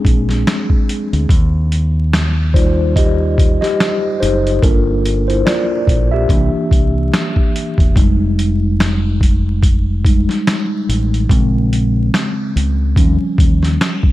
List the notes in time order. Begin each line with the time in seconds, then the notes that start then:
Already playing: G#3 C4 D4 G#4
0.05 A#1, kick, closed hi-hat
0.29 snare, closed hi-hat
0.47 finger snap, snare, closed hi-hat
0.70 kick
0.89 closed hi-hat
1.13 D2, closed hi-hat
1.29 D#2, kick, closed hi-hat
1.72 closed hi-hat
2.13 finger snap, snare, closed hi-hat
2.54 G3 D#4 F4 C5 D5, kick, closed hi-hat
2.96 G4 D#5, kick, closed hi-hat
3.38 kick, closed hi-hat
3.61 G4 D#5, snare, closed hi-hat
3.80 finger snap, snare, closed hi-hat
4.20 F#1 D#4 C5, closed hi-hat
4.47 closed hi-hat
4.63 G1 A#3 D4 F4 A4 A#4, kick, closed hi-hat
5.05 closed hi-hat
5.28 E4 C5, closed hi-hat
5.46 F4 D5, finger snap, snare, closed hi-hat
5.87 A#1, kick, closed hi-hat
6.12 G4 E5
6.29 C2 E3 A#3 D4, kick, closed hi-hat
6.54 muted fingered electric bass stroke
6.71 C2, kick, closed hi-hat
7.14 finger snap, snare, closed hi-hat
7.36 kick
7.56 closed hi-hat
7.78 E1, kick, closed hi-hat
7.96 F1 G3 G#3 D#4, kick, closed hi-hat
8.39 closed hi-hat
8.80 finger snap, snare, closed hi-hat
9.21 kick, closed hi-hat
9.63 kick, closed hi-hat
10.05 G3 G#3 D#4, kick, closed hi-hat
10.29 snare, closed hi-hat
10.47 finger snap, snare, closed hi-hat
10.89 A1, closed hi-hat
11.14 closed hi-hat
11.29 A#1 C#3 G#3 C4, kick, closed hi-hat
11.73 closed hi-hat
12.14 finger snap, snare, closed hi-hat
12.56 C#2, closed hi-hat
12.96 D#2 F3 G3 C#4, kick, closed hi-hat
13.21 muted fingered electric bass stroke
13.38 D#2, kick, closed hi-hat
13.63 snare, closed hi-hat
13.81 finger snap, snare, closed hi-hat
14.03 kick